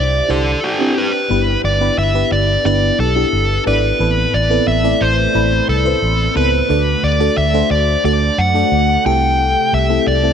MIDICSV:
0, 0, Header, 1, 4, 480
1, 0, Start_track
1, 0, Key_signature, 1, "major"
1, 0, Tempo, 674157
1, 929, Time_signature, 4, 2, 24, 8
1, 7355, End_track
2, 0, Start_track
2, 0, Title_t, "Lead electric guitar"
2, 0, Program_c, 0, 29
2, 0, Note_on_c, 0, 74, 92
2, 216, Note_on_c, 0, 69, 92
2, 421, Note_off_c, 0, 74, 0
2, 452, Note_on_c, 0, 67, 72
2, 664, Note_off_c, 0, 69, 0
2, 696, Note_on_c, 0, 71, 89
2, 785, Note_off_c, 0, 67, 0
2, 1144, Note_off_c, 0, 71, 0
2, 1174, Note_on_c, 0, 74, 87
2, 1395, Note_off_c, 0, 74, 0
2, 1413, Note_on_c, 0, 76, 93
2, 1634, Note_off_c, 0, 76, 0
2, 1654, Note_on_c, 0, 74, 89
2, 1886, Note_off_c, 0, 74, 0
2, 1894, Note_on_c, 0, 74, 98
2, 2115, Note_off_c, 0, 74, 0
2, 2136, Note_on_c, 0, 69, 102
2, 2584, Note_off_c, 0, 69, 0
2, 2615, Note_on_c, 0, 71, 97
2, 3092, Note_on_c, 0, 74, 97
2, 3106, Note_off_c, 0, 71, 0
2, 3328, Note_off_c, 0, 74, 0
2, 3331, Note_on_c, 0, 76, 103
2, 3573, Note_on_c, 0, 72, 98
2, 3577, Note_off_c, 0, 76, 0
2, 4050, Note_off_c, 0, 72, 0
2, 4053, Note_on_c, 0, 69, 104
2, 4531, Note_off_c, 0, 69, 0
2, 4534, Note_on_c, 0, 71, 93
2, 5012, Note_on_c, 0, 74, 98
2, 5026, Note_off_c, 0, 71, 0
2, 5248, Note_off_c, 0, 74, 0
2, 5251, Note_on_c, 0, 76, 106
2, 5488, Note_off_c, 0, 76, 0
2, 5491, Note_on_c, 0, 74, 96
2, 5713, Note_off_c, 0, 74, 0
2, 5732, Note_on_c, 0, 74, 103
2, 5970, Note_on_c, 0, 78, 110
2, 5978, Note_off_c, 0, 74, 0
2, 6448, Note_off_c, 0, 78, 0
2, 6451, Note_on_c, 0, 79, 111
2, 6935, Note_on_c, 0, 76, 98
2, 6944, Note_off_c, 0, 79, 0
2, 7171, Note_off_c, 0, 76, 0
2, 7174, Note_on_c, 0, 74, 100
2, 7355, Note_off_c, 0, 74, 0
2, 7355, End_track
3, 0, Start_track
3, 0, Title_t, "FM electric piano"
3, 0, Program_c, 1, 5
3, 0, Control_c, 1, 64, 127
3, 0, Note_on_c, 1, 48, 62
3, 0, Note_on_c, 1, 62, 74
3, 0, Note_on_c, 1, 64, 62
3, 0, Note_on_c, 1, 67, 61
3, 0, Note_on_c, 1, 72, 84
3, 0, Note_on_c, 1, 74, 80
3, 182, Note_off_c, 1, 62, 0
3, 183, Note_off_c, 1, 64, 0
3, 185, Note_off_c, 1, 67, 0
3, 186, Note_off_c, 1, 74, 0
3, 203, Note_on_c, 1, 62, 77
3, 205, Note_on_c, 1, 64, 70
3, 208, Note_on_c, 1, 67, 69
3, 212, Note_off_c, 1, 72, 0
3, 212, Note_on_c, 1, 72, 85
3, 541, Note_off_c, 1, 62, 0
3, 542, Note_off_c, 1, 64, 0
3, 544, Note_off_c, 1, 67, 0
3, 546, Note_off_c, 1, 72, 0
3, 562, Note_on_c, 1, 62, 77
3, 564, Note_on_c, 1, 64, 71
3, 569, Note_on_c, 1, 67, 72
3, 571, Note_on_c, 1, 60, 83
3, 901, Note_off_c, 1, 62, 0
3, 902, Note_off_c, 1, 64, 0
3, 904, Note_off_c, 1, 67, 0
3, 905, Note_off_c, 1, 60, 0
3, 922, Note_on_c, 1, 59, 72
3, 925, Note_on_c, 1, 62, 65
3, 926, Note_on_c, 1, 64, 61
3, 927, Note_on_c, 1, 43, 57
3, 929, Note_on_c, 1, 67, 66
3, 931, Note_on_c, 1, 71, 80
3, 940, Control_c, 1, 64, 0
3, 942, Note_off_c, 1, 48, 0
3, 1045, Control_c, 1, 64, 127
3, 1260, Note_off_c, 1, 59, 0
3, 1262, Note_off_c, 1, 62, 0
3, 1263, Note_off_c, 1, 64, 0
3, 1264, Note_off_c, 1, 67, 0
3, 1265, Note_off_c, 1, 71, 0
3, 1285, Note_on_c, 1, 59, 74
3, 1287, Note_on_c, 1, 62, 68
3, 1290, Note_on_c, 1, 64, 67
3, 1292, Note_on_c, 1, 67, 72
3, 1292, Note_on_c, 1, 71, 78
3, 1510, Note_off_c, 1, 59, 0
3, 1511, Note_off_c, 1, 62, 0
3, 1513, Note_off_c, 1, 64, 0
3, 1514, Note_off_c, 1, 67, 0
3, 1514, Note_off_c, 1, 71, 0
3, 1524, Note_on_c, 1, 59, 73
3, 1525, Note_on_c, 1, 62, 68
3, 1527, Note_on_c, 1, 64, 67
3, 1529, Note_on_c, 1, 67, 70
3, 1532, Note_on_c, 1, 71, 80
3, 1619, Note_off_c, 1, 43, 0
3, 1861, Note_off_c, 1, 59, 0
3, 1862, Note_off_c, 1, 62, 0
3, 1863, Note_off_c, 1, 64, 0
3, 1864, Note_off_c, 1, 67, 0
3, 1866, Note_off_c, 1, 71, 0
3, 1886, Note_on_c, 1, 59, 73
3, 1887, Note_on_c, 1, 62, 66
3, 1889, Note_on_c, 1, 64, 68
3, 1892, Note_on_c, 1, 67, 69
3, 1894, Note_on_c, 1, 71, 84
3, 2223, Note_off_c, 1, 59, 0
3, 2223, Note_off_c, 1, 62, 0
3, 2224, Note_off_c, 1, 64, 0
3, 2226, Note_off_c, 1, 67, 0
3, 2227, Note_off_c, 1, 71, 0
3, 2246, Note_on_c, 1, 59, 76
3, 2247, Note_on_c, 1, 62, 67
3, 2249, Note_on_c, 1, 64, 70
3, 2252, Note_on_c, 1, 67, 69
3, 2254, Note_on_c, 1, 69, 82
3, 2582, Note_off_c, 1, 59, 0
3, 2583, Note_off_c, 1, 62, 0
3, 2584, Note_off_c, 1, 64, 0
3, 2586, Note_off_c, 1, 67, 0
3, 2586, Note_off_c, 1, 69, 0
3, 2604, Note_on_c, 1, 59, 73
3, 2607, Note_on_c, 1, 62, 67
3, 2609, Note_on_c, 1, 64, 67
3, 2611, Note_on_c, 1, 67, 63
3, 2614, Note_on_c, 1, 74, 81
3, 2830, Note_off_c, 1, 59, 0
3, 2831, Note_off_c, 1, 62, 0
3, 2832, Note_off_c, 1, 64, 0
3, 2833, Note_off_c, 1, 67, 0
3, 2835, Note_off_c, 1, 74, 0
3, 2842, Note_on_c, 1, 59, 71
3, 2844, Note_on_c, 1, 60, 66
3, 2847, Note_on_c, 1, 64, 63
3, 2848, Note_on_c, 1, 45, 63
3, 2849, Note_on_c, 1, 69, 67
3, 2852, Note_on_c, 1, 71, 82
3, 2858, Control_c, 1, 64, 0
3, 2975, Control_c, 1, 64, 127
3, 3180, Note_off_c, 1, 59, 0
3, 3182, Note_off_c, 1, 60, 0
3, 3183, Note_off_c, 1, 64, 0
3, 3184, Note_off_c, 1, 69, 0
3, 3185, Note_off_c, 1, 71, 0
3, 3203, Note_on_c, 1, 59, 72
3, 3206, Note_on_c, 1, 60, 67
3, 3207, Note_on_c, 1, 64, 71
3, 3209, Note_on_c, 1, 69, 71
3, 3211, Note_on_c, 1, 71, 81
3, 3430, Note_off_c, 1, 59, 0
3, 3431, Note_off_c, 1, 60, 0
3, 3431, Note_off_c, 1, 64, 0
3, 3432, Note_off_c, 1, 69, 0
3, 3433, Note_off_c, 1, 71, 0
3, 3443, Note_on_c, 1, 57, 75
3, 3445, Note_on_c, 1, 60, 73
3, 3448, Note_on_c, 1, 64, 66
3, 3449, Note_on_c, 1, 69, 69
3, 3451, Note_on_c, 1, 74, 86
3, 3540, Note_off_c, 1, 45, 0
3, 3781, Note_off_c, 1, 57, 0
3, 3782, Note_off_c, 1, 60, 0
3, 3783, Note_off_c, 1, 64, 0
3, 3784, Note_off_c, 1, 69, 0
3, 3785, Note_off_c, 1, 74, 0
3, 3803, Note_on_c, 1, 57, 76
3, 3805, Note_on_c, 1, 60, 67
3, 3807, Note_on_c, 1, 64, 71
3, 3810, Note_on_c, 1, 69, 69
3, 3812, Note_on_c, 1, 83, 85
3, 4141, Note_off_c, 1, 57, 0
3, 4142, Note_off_c, 1, 60, 0
3, 4143, Note_off_c, 1, 64, 0
3, 4144, Note_off_c, 1, 69, 0
3, 4145, Note_off_c, 1, 83, 0
3, 4163, Note_on_c, 1, 71, 74
3, 4164, Note_on_c, 1, 60, 71
3, 4167, Note_on_c, 1, 64, 70
3, 4168, Note_on_c, 1, 69, 67
3, 4172, Note_on_c, 1, 72, 81
3, 4501, Note_off_c, 1, 71, 0
3, 4502, Note_off_c, 1, 60, 0
3, 4503, Note_off_c, 1, 64, 0
3, 4503, Note_off_c, 1, 69, 0
3, 4505, Note_off_c, 1, 72, 0
3, 4520, Note_on_c, 1, 59, 70
3, 4523, Note_on_c, 1, 60, 68
3, 4526, Note_on_c, 1, 64, 68
3, 4527, Note_on_c, 1, 69, 67
3, 4531, Note_on_c, 1, 71, 84
3, 4748, Note_off_c, 1, 59, 0
3, 4749, Note_off_c, 1, 60, 0
3, 4751, Note_off_c, 1, 64, 0
3, 4752, Note_off_c, 1, 69, 0
3, 4753, Note_off_c, 1, 71, 0
3, 4762, Note_on_c, 1, 57, 74
3, 4763, Note_on_c, 1, 62, 66
3, 4766, Note_on_c, 1, 50, 61
3, 4767, Note_on_c, 1, 66, 68
3, 4769, Note_on_c, 1, 69, 67
3, 4771, Note_on_c, 1, 74, 81
3, 4778, Control_c, 1, 64, 0
3, 4907, Control_c, 1, 64, 127
3, 5100, Note_off_c, 1, 57, 0
3, 5101, Note_off_c, 1, 62, 0
3, 5103, Note_off_c, 1, 66, 0
3, 5104, Note_off_c, 1, 69, 0
3, 5105, Note_off_c, 1, 74, 0
3, 5123, Note_on_c, 1, 57, 71
3, 5124, Note_on_c, 1, 62, 65
3, 5126, Note_on_c, 1, 66, 68
3, 5128, Note_on_c, 1, 69, 70
3, 5131, Note_on_c, 1, 74, 83
3, 5349, Note_off_c, 1, 57, 0
3, 5350, Note_off_c, 1, 62, 0
3, 5351, Note_off_c, 1, 66, 0
3, 5352, Note_off_c, 1, 69, 0
3, 5353, Note_off_c, 1, 74, 0
3, 5364, Note_on_c, 1, 57, 77
3, 5366, Note_on_c, 1, 62, 72
3, 5368, Note_on_c, 1, 66, 72
3, 5370, Note_on_c, 1, 69, 72
3, 5371, Note_on_c, 1, 72, 84
3, 5459, Note_off_c, 1, 50, 0
3, 5701, Note_off_c, 1, 57, 0
3, 5703, Note_off_c, 1, 62, 0
3, 5703, Note_off_c, 1, 66, 0
3, 5705, Note_off_c, 1, 69, 0
3, 5705, Note_off_c, 1, 72, 0
3, 5725, Note_on_c, 1, 57, 76
3, 5727, Note_on_c, 1, 62, 71
3, 5729, Note_on_c, 1, 66, 67
3, 5732, Note_on_c, 1, 69, 66
3, 5734, Note_on_c, 1, 74, 83
3, 6062, Note_off_c, 1, 57, 0
3, 6063, Note_off_c, 1, 62, 0
3, 6064, Note_off_c, 1, 66, 0
3, 6065, Note_off_c, 1, 69, 0
3, 6066, Note_off_c, 1, 74, 0
3, 6082, Note_on_c, 1, 57, 79
3, 6084, Note_on_c, 1, 62, 68
3, 6085, Note_on_c, 1, 66, 70
3, 6088, Note_on_c, 1, 69, 69
3, 6091, Note_on_c, 1, 74, 82
3, 6420, Note_off_c, 1, 57, 0
3, 6422, Note_off_c, 1, 62, 0
3, 6422, Note_off_c, 1, 66, 0
3, 6424, Note_off_c, 1, 69, 0
3, 6425, Note_off_c, 1, 74, 0
3, 6443, Note_on_c, 1, 57, 74
3, 6445, Note_on_c, 1, 60, 71
3, 6447, Note_on_c, 1, 64, 73
3, 6448, Note_on_c, 1, 48, 64
3, 6450, Note_on_c, 1, 67, 69
3, 6452, Note_on_c, 1, 69, 84
3, 6458, Control_c, 1, 64, 0
3, 6563, Control_c, 1, 64, 127
3, 7004, Note_off_c, 1, 57, 0
3, 7005, Note_off_c, 1, 60, 0
3, 7006, Note_off_c, 1, 64, 0
3, 7008, Note_off_c, 1, 67, 0
3, 7009, Note_off_c, 1, 69, 0
3, 7042, Note_on_c, 1, 57, 72
3, 7044, Note_on_c, 1, 60, 69
3, 7046, Note_on_c, 1, 64, 67
3, 7048, Note_on_c, 1, 67, 70
3, 7050, Note_on_c, 1, 69, 83
3, 7140, Note_off_c, 1, 48, 0
3, 7269, Note_off_c, 1, 57, 0
3, 7270, Note_off_c, 1, 60, 0
3, 7271, Note_off_c, 1, 64, 0
3, 7272, Note_off_c, 1, 67, 0
3, 7273, Note_off_c, 1, 69, 0
3, 7282, Note_on_c, 1, 57, 76
3, 7286, Note_on_c, 1, 60, 70
3, 7288, Note_on_c, 1, 64, 69
3, 7289, Note_on_c, 1, 67, 69
3, 7291, Note_on_c, 1, 69, 80
3, 7355, Note_off_c, 1, 57, 0
3, 7355, Note_off_c, 1, 60, 0
3, 7355, Note_off_c, 1, 64, 0
3, 7355, Note_off_c, 1, 67, 0
3, 7355, Note_off_c, 1, 69, 0
3, 7355, End_track
4, 0, Start_track
4, 0, Title_t, "Fingered electric bass"
4, 0, Program_c, 2, 33
4, 0, Note_on_c, 2, 36, 98
4, 143, Note_off_c, 2, 36, 0
4, 209, Note_on_c, 2, 36, 96
4, 382, Note_off_c, 2, 36, 0
4, 927, Note_on_c, 2, 31, 98
4, 1101, Note_off_c, 2, 31, 0
4, 1169, Note_on_c, 2, 31, 100
4, 1342, Note_off_c, 2, 31, 0
4, 1409, Note_on_c, 2, 31, 111
4, 1582, Note_off_c, 2, 31, 0
4, 1650, Note_on_c, 2, 31, 105
4, 1822, Note_off_c, 2, 31, 0
4, 1890, Note_on_c, 2, 31, 105
4, 2063, Note_off_c, 2, 31, 0
4, 2128, Note_on_c, 2, 35, 98
4, 2301, Note_off_c, 2, 35, 0
4, 2370, Note_on_c, 2, 31, 99
4, 2543, Note_off_c, 2, 31, 0
4, 2611, Note_on_c, 2, 32, 93
4, 2783, Note_off_c, 2, 32, 0
4, 2848, Note_on_c, 2, 33, 114
4, 3022, Note_off_c, 2, 33, 0
4, 3088, Note_on_c, 2, 33, 98
4, 3261, Note_off_c, 2, 33, 0
4, 3329, Note_on_c, 2, 33, 99
4, 3502, Note_off_c, 2, 33, 0
4, 3568, Note_on_c, 2, 33, 93
4, 3741, Note_off_c, 2, 33, 0
4, 3808, Note_on_c, 2, 33, 100
4, 3982, Note_off_c, 2, 33, 0
4, 4050, Note_on_c, 2, 36, 99
4, 4222, Note_off_c, 2, 36, 0
4, 4289, Note_on_c, 2, 33, 107
4, 4462, Note_off_c, 2, 33, 0
4, 4528, Note_on_c, 2, 37, 91
4, 4701, Note_off_c, 2, 37, 0
4, 4769, Note_on_c, 2, 38, 103
4, 4942, Note_off_c, 2, 38, 0
4, 5008, Note_on_c, 2, 38, 99
4, 5181, Note_off_c, 2, 38, 0
4, 5250, Note_on_c, 2, 38, 105
4, 5422, Note_off_c, 2, 38, 0
4, 5487, Note_on_c, 2, 38, 94
4, 5660, Note_off_c, 2, 38, 0
4, 5727, Note_on_c, 2, 38, 96
4, 5901, Note_off_c, 2, 38, 0
4, 5968, Note_on_c, 2, 42, 88
4, 6141, Note_off_c, 2, 42, 0
4, 6207, Note_on_c, 2, 38, 103
4, 6381, Note_off_c, 2, 38, 0
4, 6449, Note_on_c, 2, 36, 108
4, 6794, Note_off_c, 2, 36, 0
4, 6929, Note_on_c, 2, 36, 100
4, 7102, Note_off_c, 2, 36, 0
4, 7170, Note_on_c, 2, 36, 97
4, 7342, Note_off_c, 2, 36, 0
4, 7355, End_track
0, 0, End_of_file